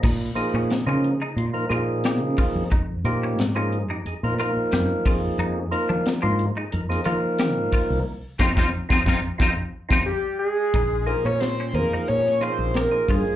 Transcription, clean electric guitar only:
\new Staff \with { instrumentName = "Clean electric guitar" } { \time 4/4 \key bes \dorian \tempo 4 = 90 ees'8 r16 des'8 des'8 ees'8 r16 f'8 g'8 f'8 | ees'8 r16 des'8 des'8 ees'8 r16 f'8 g'8 f'8 | ees'8 r16 d'8 d'8 ees'8 r16 f'8 g'8 f'8 | r8 <c' ees' f'>16 <c' ees' f'>16 r16 <c' ees' f'>16 <c' ees' f'>16 r16 <c' ees' f'>16 r8 <c' ees' f'>16 r4 |
ees'8 r16 des'8 des'8 ees'8 r16 f'8 g'8 f'8 | }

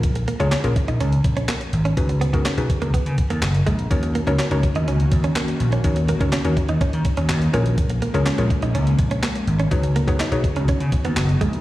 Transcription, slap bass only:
\new Staff \with { instrumentName = "Slap bass" } { \clef bass \time 4/4 \key ees \minor \tempo 4 = 124 bes,,8. des,16 r16 bes,,16 r16 bes,,16 des,8 bes,,8 r8 aes,,8 | des,8. des,16 r16 ces,16 r16 des,16 r16 des16 r16 ees,16 ges,,8 bes,,8 | ees,8. des,16 r16 des,16 r16 ees,16 des,8 ees,8 r8 bes,,8 | ees,8. des,16 r16 ees,16 r16 ees,16 r16 ees16 r16 ees,16 ees,8 bes,,8~ |
bes,,8. des,16 r16 bes,,16 r16 bes,,16 des,8 bes,,8 r8 aes,,8 | des,8. des,16 r16 ces,16 r16 des,16 r16 des16 r16 ees,16 ges,,8 bes,,8 | }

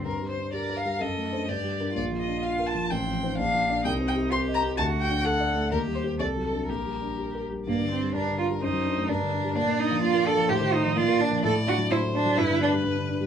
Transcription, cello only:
\new Staff \with { instrumentName = "Cello" } { \time 2/4 \key g \minor \tempo 4 = 127 r4 bes'4 | a'4 g'4 | f'2 | c'4 d'4 |
ees'4 g'4 | fis'4 a'4 | g'4 a'4 | g'4. r8 |
bes8 c'8 d'8 f'8 | ees'4 d'4 | d'8 ees'8 f'8 a'8 | g'8 ees'8 f'8 d'8 |
\key g \major a'8 fis'8 e'8 d'8 | e'8 d'8 r4 | }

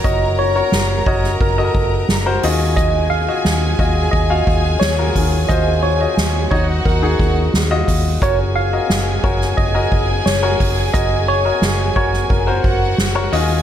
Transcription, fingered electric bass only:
\new Staff \with { instrumentName = "Fingered electric bass" } { \clef bass \time 4/4 \key ges \lydian \tempo 4 = 88 ges,,4 ges,,8 ges,,8 ges,,8 ges,,8 ges,,8 ees,8~ | ees,4 ees,8 ees,8 ees,8 ees,8 ees,8 ees,8 | ees,4 ees,8 ees,8 ees,8 ees,8 ees,8 ees,8 | ges,,4 ges,,8 ges,,8 ges,,8 ges,,8 ges,,8 ges,,8 |
ges,,4 ges,,8 ges,,8 ges,,8 ges,,8 ges,,8 ees,8 | }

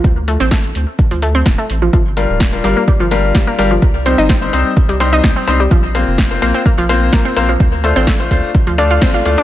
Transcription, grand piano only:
\new Staff \with { instrumentName = "Grand piano" } { \time 4/4 \key d \phrygian \tempo 4 = 127 r1 | r8 <g d' f' bes'>8. <g d' f' bes'>16 <g d' f' bes'>16 r8. <g d' f' bes'>4 <g d' f' bes'>16 r16 | r8 <g c' ees' c''>8. <g c' ees' c''>16 <g c' ees' c''>16 r8. <g c' ees' c''>4 <g c' ees' c''>16 r16 | r8 <bes c' f' c''>8. <bes c' f' c''>16 <bes c' f' c''>16 r8. <bes c' f' c''>4 <bes c' f' c''>16 r16 |
r8 <a d' f' c''>8. <a d' f' c''>16 <a d' f' c''>16 r8. <a d' f' d''>4 <a d' f' d''>16 r16 | }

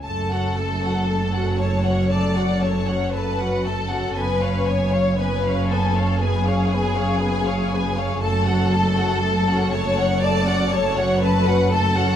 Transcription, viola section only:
\new Staff \with { instrumentName = "Viola section" } { \time 4/4 \key fis \minor \tempo 4 = 59 <a a'>16 <cis' fis'>16 <a a'>16 <cis' fis'>16 <a a'>16 <cis' fis'>16 <a a'>16 <cis' fis'>16 <a a'>16 <cis' fis'>16 <a a'>16 <cis' fis'>16 <a a'>16 <cis' fis'>16 <a a'>16 <cis' fis'>16 | <b b'>16 <cis' cis''>16 <b b'>16 <cis' cis''>16 <b b'>16 <cis' cis''>16 <b b'>16 <cis' cis''>16 <b b'>16 <cis' cis''>16 <b b'>16 <cis' cis''>16 <b b'>16 <cis' cis''>16 <b b'>16 <cis' cis''>16 | <a a'>16 <cis' fis'>16 <a a'>16 <cis' fis'>16 <a a'>16 <cis' fis'>16 <a a'>16 <cis' fis'>16 <a a'>16 <cis' fis'>16 <a a'>16 <cis' fis'>16 <a a'>16 <cis' fis'>16 <a a'>16 <cis' fis'>16 | }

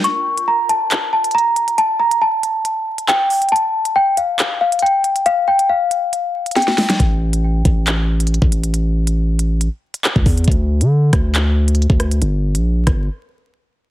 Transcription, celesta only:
\new Staff \with { instrumentName = "Celesta" } { \time 4/4 \key g \dorian \tempo 4 = 138 cis'''4 bes''8 a''4 a''8 bes''4 | a''8 bes''8 a''2 g''4 | a''4 g''8 f''4 f''8 g''4 | f''8 g''8 f''2 g''4 |
r1 | r1 | r1 | r1 | }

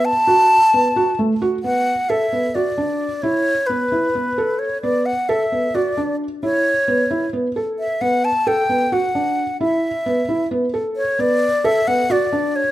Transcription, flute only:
\new Staff \with { instrumentName = "Flute" } { \time 7/8 \key b \minor \tempo 4 = 132 a''2~ a''8 r4 | fis''4 e''4 d''4. | cis''4 b'2 cis''8 | d''8 fis''8 e''4 d''4 r8 |
cis''2 r4 e''8 | fis''8 a''8 g''4 fis''4. | e''2 r4 cis''8 | d''4 e''8 fis''8 d''4 cis''8 | }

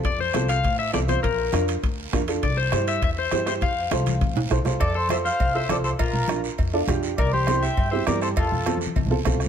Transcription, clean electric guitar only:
\new Staff \with { instrumentName = "Clean electric guitar" } { \time 4/4 \key f \major \tempo 4 = 202 d''8 c''4 f''4 e''8 d''8 c''8 | bes'4. r2 r8 | d''8 c''4 e''8 e''8 c''4 c''8 | f''2.~ f''8 r8 |
a'8 a'8 c''8 c''4 c''8 a'8 a'8 | f'4. r2 r8 | bes'8 g'4 e''4 c''8 bes'8 a'8 | f'4. r2 r8 | }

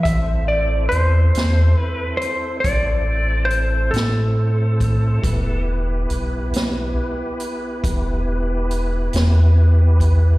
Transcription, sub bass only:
\new Staff \with { instrumentName = "Sub bass" } { \clef bass \time 12/8 \key e \minor \tempo 4. = 46 a,,4 e,8 e,8 r4 a,,4. a,4. | e,,4 b,,8 b,,8 r4 e,,4. e,4. | }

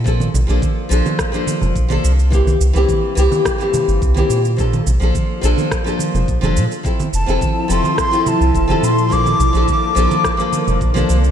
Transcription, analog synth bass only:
\new Staff \with { instrumentName = "Analog synth bass" } { \clef bass \time 4/4 \key bes \lydian \tempo 4 = 106 bes,8 bes,,16 bes,,16 r8 bes,,16 r4 f,,16 bes,,16 r16 c,8~ | c,8 c,16 c,16 r8 c,16 r4 g,,16 c,16 r16 bes,8~ | bes,8 bes,,16 bes,,16 r8 bes,,16 r4 f,,16 bes,,16 f,,16 bes,16 r16 | r8 f,,16 f,,16 r8 f,,16 r4 c,16 f,,16 r16 bes,8~ |
bes,8 bes,,16 bes,,16 r8 bes,,16 r4 f,,16 bes,,16 r16 c,8 | }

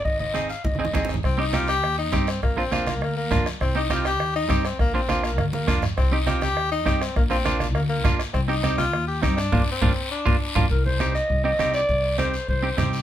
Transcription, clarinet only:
\new Staff \with { instrumentName = "Clarinet" } { \time 4/4 \key c \minor \tempo 4 = 203 ees''8 ees''4 f''8 ees''8 ees''4 r8 | r1 | r1 | r1 |
r1 | r1 | r1 | r1 |
r1 | bes'8 c''4 ees''4 ees''4 d''8~ | d''4 c''4 c''4. r8 | }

